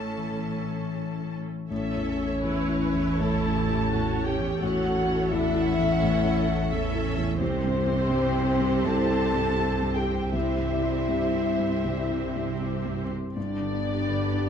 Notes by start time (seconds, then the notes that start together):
Already playing: A1 A2 C#4 E4 A4 A5
0.17 E3
0.56 C#4
0.94 A4
1.33 C#4
1.70 A1 A2 C#4 A4 C#5 E5
1.95 E2
2.08 C#4
2.43 E2 E4 A4 B4 C#5
2.68 E4
2.82 C#4 E4
2.94 E2
3.19 A1 E3 A4 A5
3.45 C#4
3.55 C#4 G4
3.69 E4
3.90 E2 C#4 F#4 A4 C#5
4.17 E4
4.25 C#4 G4 G5
4.40 E2
4.61 A1 A2 C#4 F#4 A4 C#5 F#5
4.87 C#4
4.97 E3
5.09 E4
5.32 E2 D4 E4 A4 E5 F#5
5.55 E4
5.66 C#4
5.79 E2
6.01 A1 E3 A4
6.25 C#4
6.36 C#4
6.71 E2 C#4 A4 E5
6.95 E4
7.06 C#4
7.17 E2
7.40 C2 C3 C4 G4 C5
7.64 G2
7.75 C4
7.87 C4
8.10 G2 G4
8.34 C4
8.47 C4
8.60 G2
8.83 C2 G3 A4 A5
9.09 C4
9.22 C4
9.33 G2
9.57 C4 G4
9.82 G2
9.95 C4 G4 G5
10.08 C4
10.33 C2 C3 C4 E4 G4 C5 E5
10.58 G2
10.72 G3
10.84 C4
11.08 G2 G4
11.34 C4
11.48 C4
11.59 G2
11.85 C2 G3
12.11 C4
12.24 C4
12.36 G2
12.61 C4 G4
12.86 G2
12.99 C4
13.11 C4
13.35 G1 G2 B3 D4 G4 D5
13.61 D3
13.73 D4
13.85 D4
14.08 D3 B4
14.34 D4